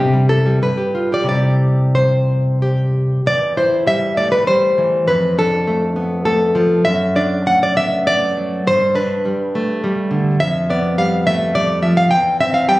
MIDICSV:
0, 0, Header, 1, 2, 480
1, 0, Start_track
1, 0, Key_signature, 0, "major"
1, 0, Tempo, 656455
1, 926, Time_signature, 3, 2, 24, 8
1, 2376, Tempo, 612870
1, 2856, Tempo, 598802
1, 6696, Tempo, 578035
1, 10137, End_track
2, 0, Start_track
2, 0, Title_t, "Nylon-string guitar"
2, 0, Program_c, 0, 24
2, 0, Note_on_c, 0, 48, 85
2, 0, Note_on_c, 0, 67, 111
2, 99, Note_on_c, 0, 55, 63
2, 200, Note_off_c, 0, 67, 0
2, 211, Note_on_c, 0, 64, 68
2, 214, Note_on_c, 0, 69, 107
2, 326, Note_off_c, 0, 55, 0
2, 335, Note_on_c, 0, 55, 64
2, 430, Note_off_c, 0, 48, 0
2, 437, Note_off_c, 0, 69, 0
2, 444, Note_off_c, 0, 64, 0
2, 447, Note_off_c, 0, 55, 0
2, 455, Note_on_c, 0, 43, 73
2, 459, Note_on_c, 0, 71, 99
2, 567, Note_on_c, 0, 67, 66
2, 693, Note_on_c, 0, 65, 58
2, 797, Note_off_c, 0, 71, 0
2, 812, Note_off_c, 0, 67, 0
2, 820, Note_on_c, 0, 67, 58
2, 832, Note_on_c, 0, 74, 101
2, 901, Note_off_c, 0, 43, 0
2, 904, Note_on_c, 0, 48, 72
2, 920, Note_on_c, 0, 55, 54
2, 925, Note_off_c, 0, 65, 0
2, 928, Note_on_c, 0, 64, 51
2, 933, Note_off_c, 0, 74, 0
2, 935, Note_off_c, 0, 67, 0
2, 942, Note_on_c, 0, 74, 104
2, 1409, Note_off_c, 0, 74, 0
2, 1426, Note_on_c, 0, 72, 82
2, 1883, Note_off_c, 0, 72, 0
2, 1917, Note_on_c, 0, 67, 87
2, 2336, Note_off_c, 0, 48, 0
2, 2344, Note_off_c, 0, 55, 0
2, 2348, Note_off_c, 0, 64, 0
2, 2366, Note_off_c, 0, 67, 0
2, 2386, Note_on_c, 0, 40, 77
2, 2393, Note_on_c, 0, 74, 111
2, 2616, Note_off_c, 0, 74, 0
2, 2629, Note_on_c, 0, 64, 59
2, 2630, Note_on_c, 0, 72, 81
2, 2852, Note_off_c, 0, 72, 0
2, 2859, Note_on_c, 0, 55, 69
2, 2866, Note_on_c, 0, 76, 118
2, 3092, Note_off_c, 0, 76, 0
2, 3103, Note_on_c, 0, 57, 56
2, 3105, Note_on_c, 0, 74, 113
2, 3218, Note_off_c, 0, 74, 0
2, 3221, Note_on_c, 0, 71, 105
2, 3333, Note_off_c, 0, 55, 0
2, 3340, Note_off_c, 0, 71, 0
2, 3342, Note_on_c, 0, 55, 60
2, 3344, Note_off_c, 0, 64, 0
2, 3346, Note_on_c, 0, 72, 96
2, 3591, Note_on_c, 0, 52, 62
2, 3797, Note_off_c, 0, 40, 0
2, 3807, Note_off_c, 0, 72, 0
2, 3824, Note_off_c, 0, 55, 0
2, 3825, Note_off_c, 0, 57, 0
2, 3828, Note_off_c, 0, 52, 0
2, 3829, Note_on_c, 0, 71, 108
2, 3833, Note_on_c, 0, 41, 79
2, 4054, Note_off_c, 0, 71, 0
2, 4074, Note_on_c, 0, 62, 61
2, 4078, Note_on_c, 0, 69, 103
2, 4309, Note_on_c, 0, 57, 63
2, 4535, Note_off_c, 0, 62, 0
2, 4538, Note_on_c, 0, 59, 59
2, 4756, Note_off_c, 0, 69, 0
2, 4767, Note_off_c, 0, 57, 0
2, 4773, Note_on_c, 0, 69, 100
2, 4776, Note_on_c, 0, 57, 58
2, 5011, Note_on_c, 0, 53, 58
2, 5230, Note_off_c, 0, 41, 0
2, 5236, Note_off_c, 0, 69, 0
2, 5249, Note_on_c, 0, 76, 117
2, 5253, Note_on_c, 0, 42, 80
2, 5255, Note_off_c, 0, 53, 0
2, 5257, Note_off_c, 0, 57, 0
2, 5258, Note_off_c, 0, 59, 0
2, 5487, Note_off_c, 0, 76, 0
2, 5496, Note_on_c, 0, 62, 63
2, 5500, Note_on_c, 0, 74, 91
2, 5730, Note_off_c, 0, 74, 0
2, 5742, Note_on_c, 0, 57, 66
2, 5747, Note_on_c, 0, 78, 123
2, 5862, Note_off_c, 0, 78, 0
2, 5876, Note_on_c, 0, 74, 100
2, 5984, Note_off_c, 0, 74, 0
2, 5988, Note_on_c, 0, 76, 124
2, 5993, Note_on_c, 0, 59, 59
2, 6215, Note_off_c, 0, 76, 0
2, 6218, Note_off_c, 0, 62, 0
2, 6223, Note_off_c, 0, 57, 0
2, 6229, Note_on_c, 0, 74, 112
2, 6232, Note_on_c, 0, 57, 61
2, 6470, Note_on_c, 0, 54, 61
2, 6662, Note_off_c, 0, 42, 0
2, 6682, Note_off_c, 0, 74, 0
2, 6701, Note_off_c, 0, 54, 0
2, 6703, Note_off_c, 0, 57, 0
2, 6704, Note_off_c, 0, 59, 0
2, 6709, Note_on_c, 0, 43, 84
2, 6714, Note_on_c, 0, 72, 123
2, 6937, Note_off_c, 0, 72, 0
2, 6941, Note_on_c, 0, 62, 71
2, 6947, Note_on_c, 0, 71, 112
2, 7195, Note_on_c, 0, 55, 65
2, 7443, Note_on_c, 0, 57, 61
2, 7642, Note_off_c, 0, 71, 0
2, 7670, Note_off_c, 0, 55, 0
2, 7670, Note_off_c, 0, 62, 0
2, 7680, Note_on_c, 0, 55, 65
2, 7904, Note_on_c, 0, 50, 61
2, 8126, Note_off_c, 0, 43, 0
2, 8147, Note_on_c, 0, 41, 85
2, 8148, Note_on_c, 0, 76, 119
2, 8149, Note_off_c, 0, 50, 0
2, 8159, Note_off_c, 0, 55, 0
2, 8163, Note_off_c, 0, 57, 0
2, 8377, Note_off_c, 0, 76, 0
2, 8393, Note_on_c, 0, 59, 68
2, 8399, Note_on_c, 0, 74, 97
2, 8621, Note_off_c, 0, 74, 0
2, 8628, Note_on_c, 0, 55, 72
2, 8631, Note_on_c, 0, 77, 127
2, 8853, Note_off_c, 0, 77, 0
2, 8867, Note_on_c, 0, 57, 60
2, 8867, Note_on_c, 0, 76, 121
2, 9087, Note_off_c, 0, 76, 0
2, 9093, Note_off_c, 0, 55, 0
2, 9095, Note_off_c, 0, 59, 0
2, 9102, Note_on_c, 0, 55, 63
2, 9102, Note_on_c, 0, 74, 117
2, 9322, Note_off_c, 0, 74, 0
2, 9327, Note_on_c, 0, 53, 63
2, 9331, Note_on_c, 0, 76, 110
2, 9448, Note_off_c, 0, 76, 0
2, 9452, Note_on_c, 0, 77, 108
2, 9531, Note_off_c, 0, 41, 0
2, 9560, Note_on_c, 0, 40, 85
2, 9561, Note_off_c, 0, 77, 0
2, 9564, Note_on_c, 0, 79, 113
2, 9567, Note_off_c, 0, 53, 0
2, 9571, Note_off_c, 0, 55, 0
2, 9571, Note_off_c, 0, 57, 0
2, 9799, Note_off_c, 0, 79, 0
2, 9811, Note_on_c, 0, 60, 70
2, 9812, Note_on_c, 0, 76, 117
2, 9920, Note_off_c, 0, 76, 0
2, 9924, Note_on_c, 0, 77, 107
2, 10043, Note_off_c, 0, 77, 0
2, 10043, Note_on_c, 0, 55, 69
2, 10046, Note_on_c, 0, 79, 121
2, 10137, Note_off_c, 0, 40, 0
2, 10137, Note_off_c, 0, 55, 0
2, 10137, Note_off_c, 0, 60, 0
2, 10137, Note_off_c, 0, 79, 0
2, 10137, End_track
0, 0, End_of_file